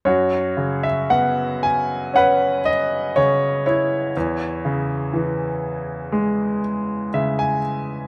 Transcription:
0.05 F#2 F#4 C#5
0.57 C#3
0.83 E5
1.10 B3 F#5
1.63 G#5
2.14 C#4 B4 F#5
2.65 D#5
3.16 C#3 C#5
3.66 E4 C#5
4.17 E2
4.65 C#3
5.14 E3
6.12 G#3
7.14 C#3 E5
7.39 G#5

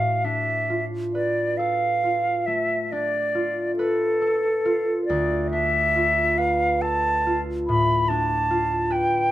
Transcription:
Already playing: A2 A4 F5
0.24 D4 E5
0.70 F4
1.14 B4 D5
1.57 A4 F5
2.03 F4
2.46 A3 E5
2.92 D4 D5
3.35 F4
3.76 A4 B4
4.21 A4
4.65 F4
5.05 D5
5.10 D2
5.51 D4 E5
5.95 F4
6.38 B4 F5
6.81 A4 A5
7.27 F4
7.67 A2 B5
8.08 D4 A5
8.51 F4
8.90 B4 G5

